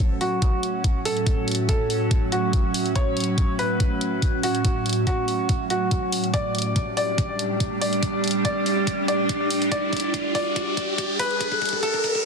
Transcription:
Already playing: A2 F#3 C#4 F#4 A4
0.21 F#4, open hi-hat
0.42 kick, closed hi-hat
0.63 closed hi-hat
0.84 kick, closed hi-hat
1.05 A4, open hi-hat
1.17 closed hi-hat
1.26 kick, closed hi-hat
1.48 closed hi-hat
1.51 closed hi-hat
1.55 closed hi-hat
1.69 A4, kick, closed hi-hat
1.90 open hi-hat
2.11 kick, closed hi-hat
2.32 F#4, closed hi-hat
2.53 kick, closed hi-hat
2.74 open hi-hat
2.86 closed hi-hat
2.96 C#5, kick, closed hi-hat
3.17 closed hi-hat
3.20 closed hi-hat
3.24 closed hi-hat
3.38 kick, closed hi-hat
3.59 B4, open hi-hat
3.80 kick, closed hi-hat
4.01 closed hi-hat
4.22 kick, closed hi-hat
4.43 F#4, open hi-hat
4.55 closed hi-hat
4.65 kick, closed hi-hat
4.86 closed hi-hat
4.89 closed hi-hat
4.93 closed hi-hat
5.07 F#4, kick, closed hi-hat
5.28 open hi-hat
5.49 kick, closed hi-hat
5.70 F#4, closed hi-hat
5.91 kick, closed hi-hat
6.12 open hi-hat
6.24 closed hi-hat
6.34 G3 D4 G4 D5, kick, closed hi-hat, riser
6.55 closed hi-hat
6.58 closed hi-hat
6.62 closed hi-hat
6.76 kick, closed hi-hat
6.97 D5, open hi-hat
7.18 kick, closed hi-hat
7.39 closed hi-hat
7.60 kick, closed hi-hat
7.81 D5, open hi-hat
7.93 closed hi-hat
8.03 kick, closed hi-hat
8.24 closed hi-hat
8.28 closed hi-hat
8.31 closed hi-hat
8.45 D5, kick, closed hi-hat
8.66 open hi-hat
8.87 kick, closed hi-hat
9.08 D5, closed hi-hat
9.29 kick, closed hi-hat
9.51 open hi-hat
9.62 closed hi-hat
9.72 D5, kick, closed hi-hat
9.93 kick, closed hi-hat
9.97 closed hi-hat
10.00 closed hi-hat
10.14 kick, closed hi-hat
10.35 D5, kick, open hi-hat
10.56 kick, closed hi-hat
10.77 kick, closed hi-hat
10.98 kick, closed hi-hat
11.19 B4, kick, open hi-hat
11.31 closed hi-hat
11.41 kick, closed hi-hat
11.52 kick
11.62 kick, closed hi-hat
11.65 closed hi-hat
11.69 closed hi-hat
11.73 kick
11.83 A4, kick, closed hi-hat
11.94 kick
12.04 kick, open hi-hat
12.15 kick

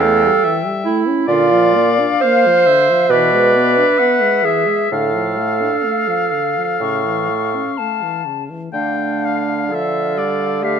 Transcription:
Already playing: E2 A4 G5
0.00 A3 F5
0.24 G3
0.44 E3 E5
0.66 G3
0.85 A3 E4
1.08 C#4
1.28 A#2 D3 F4 D5 F5
1.51 F3
1.75 A#3
1.99 D4
2.21 A#3 C5 F5
2.46 F3
2.67 D3 E5
2.90 F3
3.09 B2 E3 B4 D5 E5
3.33 G#3
3.55 B3
3.77 D4
3.99 B3 F#5
4.22 G#3
4.44 E3 G#4 E5
4.66 G#3
4.91 A2 D3 A4 F5
5.13 F3
5.37 A3
5.62 D4
5.85 A3 F5
6.08 F3
6.33 D3
6.57 F3
6.80 A2 C#3 C#6
7.05 E3
7.30 A3
7.55 C#4
7.77 A3 A5
8.02 E3
8.26 C#3
8.50 E3
8.72 D3 A3 D4 F5 G5
9.25 F5
9.72 F3 A4 E5 F5
10.17 G3 D5
10.62 A3 G4 E5 F5

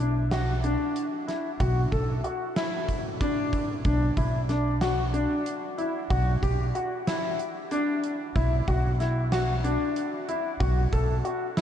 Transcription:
Already playing: B1
0.00 D4
0.31 F#4, snare, closed hi-hat
0.64 D4, closed hi-hat
0.96 closed hi-hat
1.28 E4, snare, closed hi-hat
1.60 B1 F#4, kick, closed hi-hat
1.92 B1 A4, kick, closed hi-hat
2.24 F#4, closed hi-hat
2.56 E4, snare, closed hi-hat
2.89 kick, closed hi-hat
3.21 D4, kick, closed hi-hat
3.53 kick, closed hi-hat
3.85 B1 D4, kick, closed hi-hat
4.17 B1 E4, kick, closed hi-hat
4.49 D4, snare, closed hi-hat
4.81 F#4, snare, closed hi-hat
5.14 D4, closed hi-hat
5.46 closed hi-hat
5.78 E4, closed hi-hat
6.10 B1 F#4, kick, closed hi-hat
6.42 B1 G4, kick, closed hi-hat
6.75 F#4, closed hi-hat
7.07 E4, snare, closed hi-hat
7.39 closed hi-hat
7.71 D4, closed hi-hat
8.04 closed hi-hat
8.35 B1 E4, kick, closed hi-hat
8.68 B1 F#4, kick, closed hi-hat
9.00 E4, snare, closed hi-hat
9.32 F#4, snare, closed hi-hat
9.64 D4, closed hi-hat
9.96 closed hi-hat
10.29 E4, closed hi-hat
10.60 B1 F#4, kick, closed hi-hat
10.93 B1 A4, kick, closed hi-hat
11.25 F#4, closed hi-hat
11.57 E4, snare, closed hi-hat

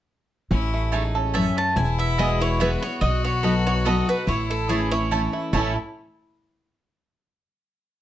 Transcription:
0.51 A1 A2 C#4 E4
0.74 A3
0.92 G#3 A3 D#4 E4 C#5 A5
1.15 C#4 A4
1.34 F#2 A3 C#4 E4 C#5 E5 A5
1.57 A3 A5
1.76 E1 E2 E4 G#5
1.98 B3 E5
2.18 E3 G#3 B3 E4 F#4 D#5 E5 G#5
2.41 E4 C#5
2.60 E3 G#3 B3 E4 F#4 B4 E5 G#5
2.82 B3 F#4 C#5
3.01 B1 B2 F#4 D#5
3.24 B3 C#5
3.43 F#3 B3 D#4 F#4 A4 D#5 B5
3.67 F#4 C#5
3.85 F#3 B3 D#4 F#4 A4 D#5 B5
4.08 D#4 F#4 B4
4.27 A1 A2 E4 C#5
4.50 A3 A4
4.68 E3 A3 C#4 E4 G#4 C#5 A5
4.91 C#4 E4 C#5
5.11 E3 A3 C#4 E4 A4 C#5 A5
5.33 E4
5.53 A1 A2 E3 A3 C#4 E4 C#5 A5
5.57 E4 A4

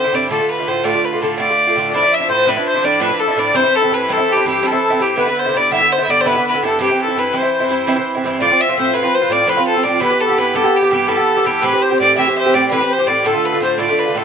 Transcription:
Already playing: C5
0.04 D3 C4 E4
0.12 G2 D3 C4 E4 D5
0.29 A2 D3 A3 F4 A4
0.40 D3 A3 F4
0.51 B4
0.58 D3 A3 F4
0.67 A2 D3 A3 F4 C5
0.84 A2 D3 A3 F4 D5
0.94 D3 A3 F4
1.05 B4
1.13 D3 A3 F4
1.21 A2 D3 A3 F4 A4
1.38 A2 D3 A3 F4 D5
1.49 D3 A3 F4
1.67 D3 A3 F4
1.76 A2 D3 A3 F4
1.90 A2 F3 D5
1.95 D4 E4
2.03 F3 D4 E4
2.12 E5
2.20 F3 D4 E4
2.29 A2 F3 D4 E4 C5
2.41 C5
2.46 A2 F3 D4 E4 B4
2.57 F3 D4 E4
2.66 C5
2.74 F3 D4 E4
2.83 A2 F3 D4 E4 D5
3.00 A2 F3 D4 E4 B4
3.09 F3 D4 E4
3.19 A4
3.28 F3 D4 E4
3.36 A2 F3 D4 E4 D5
3.53 G2 E3 C4 E4 C5
3.64 E3 C4 E4
3.75 A4
3.82 E3 C4 E4
3.91 G2 E3 C4 E4 B4
4.08 G2 E3 C4 E4 A4
4.17 E3 C4 E4
4.30 G4
4.37 E3 C4 E4
4.45 G2 E3 C4 E4 G4
4.62 G2 E3 C4 E4 A4
4.72 E3 C4 E4
4.90 E3 C4 E4
4.99 G2 E3 C4 E4 G4
5.16 G2 D3 B3 E4 B4
5.26 D3 B3 E4
5.39 C5
5.46 D3 B3 E4
5.54 G2 D3 B3 E4 D5
5.71 G2 D3 B3 E4 E5
5.80 D3 B3 E4
5.92 C5
5.98 D3 B3 E4
6.04 G2 E5
6.09 D3 B3 E4 D5
6.20 C5
6.24 G2 D3 B3 E4 B4
6.35 D3 B3 E4
6.47 B4
6.54 D3 B3 E4
6.62 G2 D3 B3 E4 A4
6.79 G2 E3 C4 E4 G4
6.90 E3 C4 E4
7.01 A4
7.08 E3 C4 E4
7.16 G2 E3 C4 E4 B4
7.33 G2 E3 C4 E4 C5
7.37 C5
7.42 E3 C4 E4
7.60 E3 C4 E4
7.68 G2 E3 C4 E4
7.86 G2 E3 C4 E4
7.96 E3 C4 E4
8.15 E3 C4 E4
8.24 G2 E3 C4 E4
8.40 A2 F3 C4 F4 D5
8.50 F3 C4 F4
8.61 E5
8.69 F3 C4 F4
8.77 A2 F3 C4 F4 C5
8.93 A2 F3 C4 F4 B4
9.03 F3 C4 F4
9.15 C5
9.22 F3 C4 F4
9.29 A2 F3 C4 F4 D5
9.46 A2 F3 C4 F4 B4
9.57 F3 C4 F4
9.67 A4
9.76 F3 C4 F4
9.84 A2 F3 C4 F4 D5
10.00 G2 E3 B3 G4 B4
10.11 E3 B3 G4
10.20 A4
10.28 E3 B3 G4
10.37 G2 E3 B3 G4 B4
10.54 G2 E3 B3 G4 A4
10.64 E3 B3 G4
10.74 G4
10.82 E3 B3 G4
10.91 G2 E3 B3 G4
11.02 G4
11.07 G2 E3 B3 G4 A4
11.17 E3 B3 G4
11.36 E3 B3 G4
11.44 G2 E3 B3 G4
11.62 A2 E3 C4 G4 B4
11.72 E3 C4 G4
11.82 C5
11.91 E3 C4 G4
11.99 A2 E3 C4 G4 D5
12.16 A2 E3 C4 G4 E5
12.27 E3 C4 G4
12.38 C5
12.46 E3 C4 G4
12.54 A2 E3 C4 G4 D5
12.71 A2 E3 C4 G4 B4
12.80 E3 C4 G4
12.90 C5
12.99 E3 C4 G4
13.06 A2 E3 C4 G4 D5
13.24 A2 D3 A3 F4 A4
13.33 D3 A3 F4
13.45 B4
13.52 D3 A3 F4
13.61 A2 D3 A3 F4 C5
13.78 A2 D3 A3 F4 D5
13.88 D3 A3 F4
13.99 B4
14.06 D3 A3 F4
14.15 A2 D3 A3 F4 A4

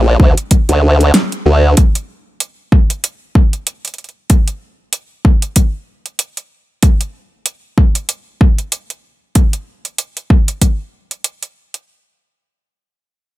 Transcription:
Already playing: A#1
0.20 D2, kick
0.37 closed hi-hat
0.51 kick, closed hi-hat
0.69 D2, closed hi-hat
1.01 closed hi-hat
1.14 snare, closed hi-hat
1.32 closed hi-hat
1.46 D2
1.77 kick, closed hi-hat
1.95 closed hi-hat
2.40 closed hi-hat
2.72 kick
2.90 closed hi-hat
3.04 closed hi-hat
3.35 kick
3.53 closed hi-hat
3.67 closed hi-hat
3.85 closed hi-hat
3.88 closed hi-hat
3.94 closed hi-hat
3.98 closed hi-hat
4.04 closed hi-hat
4.09 closed hi-hat
4.30 kick, closed hi-hat
4.48 closed hi-hat
4.93 closed hi-hat
5.25 kick
5.42 closed hi-hat
5.56 kick, closed hi-hat
6.06 closed hi-hat
6.19 closed hi-hat
6.37 closed hi-hat
6.83 kick, closed hi-hat
7.01 closed hi-hat
7.46 closed hi-hat
7.78 kick
7.95 closed hi-hat
8.09 closed hi-hat
8.41 kick
8.58 closed hi-hat
8.72 closed hi-hat
8.90 closed hi-hat
9.35 kick, closed hi-hat
9.53 closed hi-hat
9.85 closed hi-hat
9.98 closed hi-hat
10.17 closed hi-hat
10.30 kick
10.48 closed hi-hat
10.62 kick, closed hi-hat
11.11 closed hi-hat
11.24 closed hi-hat
11.43 closed hi-hat
11.74 closed hi-hat

